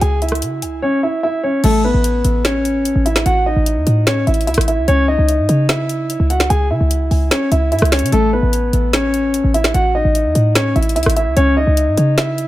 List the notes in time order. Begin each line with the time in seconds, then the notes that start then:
0.01 C#2 G#4 G#5, closed hi-hat
0.22 E4 E5, closed hi-hat
0.29 cross-stick, closed hi-hat
0.35 closed hi-hat
0.42 C#3, closed hi-hat
0.62 C#2, closed hi-hat
0.82 C#4 C#5
1.03 E4 E5
1.23 E4 E5
1.43 C#4 C#5
1.64 A1 A3 A4, closed hi-hat, crash
1.84 B3 B4
1.94 A1
2.04 closed hi-hat
2.25 A1, closed hi-hat
2.45 C#4 C#5, finger snap, snare, closed hi-hat
2.65 closed hi-hat
2.85 closed hi-hat
2.96 A1
3.06 E4 E5, closed hi-hat
3.16 finger snap, snare
3.26 A1 F#4 F#5, closed hi-hat
3.46 D#4 D#5
3.56 A1
3.66 closed hi-hat
3.77 E2
3.87 A2, closed hi-hat
4.07 C#4 C#5, finger snap, snare, closed hi-hat
4.27 A1 E4 E5, closed hi-hat
4.34 closed hi-hat
4.41 closed hi-hat
4.47 C#2 E4 E5, closed hi-hat
4.54 A1, cross-stick, closed hi-hat
4.61 closed hi-hat
4.68 E4 E5, closed hi-hat
4.78 C#2
4.88 C#2 C#4 C#5, closed hi-hat
5.08 D#4 D#5
5.18 C#2
5.29 closed hi-hat
5.39 G#2
5.49 C#3, closed hi-hat
5.69 E4 E5, finger snap, snare, closed hi-hat
5.89 closed hi-hat
6.10 closed hi-hat
6.20 C#2
6.30 F#4 F#5, closed hi-hat
6.40 finger snap, snare
6.50 C#2 G#4 G#5, closed hi-hat
6.70 C#3 E4 E5
6.81 C#2
6.91 closed hi-hat
7.11 C#2, open hi-hat
7.31 C#4 C#5, finger snap, snare, closed hi-hat
7.52 C#2 E4 E5, closed hi-hat
7.72 G#2 E4 E5, closed hi-hat
7.79 C#2, cross-stick, closed hi-hat
7.85 closed hi-hat
7.92 C#4 C#5, finger snap, snare, closed hi-hat, open hi-hat
7.99 C#3, closed hi-hat
8.06 closed hi-hat
8.12 A1 A3 A4, closed hi-hat
8.33 B3 B4
8.43 A1
8.53 closed hi-hat
8.73 A1, closed hi-hat
8.93 C#4 C#5, finger snap, snare, closed hi-hat
9.14 closed hi-hat
9.34 closed hi-hat
9.44 A1
9.54 E4 E5, closed hi-hat
9.64 finger snap, snare
9.74 A1 F#4 F#5, closed hi-hat
9.95 D#4 D#5
10.05 A1
10.15 closed hi-hat
10.25 E2
10.35 A2, closed hi-hat
10.55 C#4 C#5, finger snap, snare, closed hi-hat
10.76 A1 E4 E5, closed hi-hat
10.83 closed hi-hat
10.89 closed hi-hat
10.96 C#2 E4 E5, closed hi-hat
11.03 A1, cross-stick, closed hi-hat
11.10 closed hi-hat
11.16 E4 E5, closed hi-hat
11.26 C#2
11.36 C#2 C#4 C#5, closed hi-hat
11.57 D#4 D#5
11.67 C#2
11.77 closed hi-hat
11.87 G#2
11.97 C#3, closed hi-hat
12.18 E4 E5, finger snap, snare, closed hi-hat
12.38 closed hi-hat